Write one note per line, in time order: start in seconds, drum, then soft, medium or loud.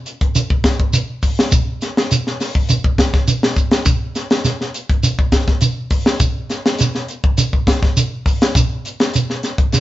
0.06 closed hi-hat medium
0.06 shekere soft
0.21 kick medium
0.21 closed hi-hat medium
0.35 closed hi-hat medium
0.35 shekere medium
0.50 kick medium
0.64 kick medium
0.64 snare medium
0.64 closed hi-hat medium
0.64 shekere soft
0.80 kick medium
0.93 closed hi-hat medium
0.93 shekere medium
1.22 kick medium
1.22 open hi-hat medium
1.22 shekere soft
1.39 snare medium
1.52 kick loud
1.52 closed hi-hat medium
1.52 shekere medium
1.82 snare soft
1.82 closed hi-hat medium
1.82 shekere soft
1.97 snare medium
2.11 closed hi-hat medium
2.11 shekere medium
2.27 snare soft
2.40 snare soft
2.40 open hi-hat medium
2.40 shekere soft
2.55 kick medium
2.69 closed hi-hat medium
2.69 shekere medium
2.84 kick medium
2.98 kick medium
2.98 snare medium
2.98 closed hi-hat medium
2.98 shekere soft
3.14 kick medium
3.14 snare soft
3.28 closed hi-hat medium
3.28 shekere medium
3.43 snare medium
3.56 kick medium
3.56 closed hi-hat soft
3.56 shekere soft
3.71 snare medium
3.71 closed hi-hat soft
3.86 kick loud
3.86 closed hi-hat medium
3.86 shekere medium
4.15 snare soft
4.15 closed hi-hat soft
4.15 shekere soft
4.30 snare medium
4.30 closed hi-hat soft
4.45 snare soft
4.45 closed hi-hat medium
4.45 shekere medium
4.61 snare soft
4.74 closed hi-hat medium
4.74 shekere soft
4.90 kick medium
4.90 closed hi-hat soft
5.03 closed hi-hat medium
5.03 shekere medium
5.19 kick medium
5.32 kick medium
5.32 snare medium
5.32 closed hi-hat medium
5.32 shekere soft
5.48 kick medium
5.48 snare soft
5.61 closed hi-hat medium
5.61 shekere medium
5.90 kick medium
5.90 open hi-hat medium
5.90 shekere soft
6.06 snare medium
6.20 kick medium
6.20 closed hi-hat medium
6.20 shekere medium
6.50 snare soft
6.50 closed hi-hat medium
6.50 shekere soft
6.66 snare medium
6.79 snare soft
6.79 closed hi-hat medium
6.79 shekere medium
6.95 snare soft
7.08 closed hi-hat medium
7.08 shekere soft
7.24 kick medium
7.38 closed hi-hat medium
7.38 shekere loud
7.53 kick medium
7.67 kick medium
7.67 snare medium
7.67 closed hi-hat medium
7.67 shekere soft
7.83 kick medium
7.83 snare soft
7.97 closed hi-hat medium
7.97 shekere medium
8.26 kick medium
8.26 open hi-hat medium
8.26 shekere soft
8.42 snare medium
8.42 closed hi-hat medium
8.55 kick loud
8.55 closed hi-hat medium
8.55 shekere medium
8.85 closed hi-hat medium
8.85 shekere soft
9.00 snare medium
9.00 closed hi-hat soft
9.14 closed hi-hat medium
9.14 shekere medium
9.30 snare soft
9.43 snare soft
9.43 closed hi-hat medium
9.43 shekere soft
9.58 kick medium
9.58 closed hi-hat medium
9.72 snare soft
9.72 closed hi-hat medium
9.72 shekere medium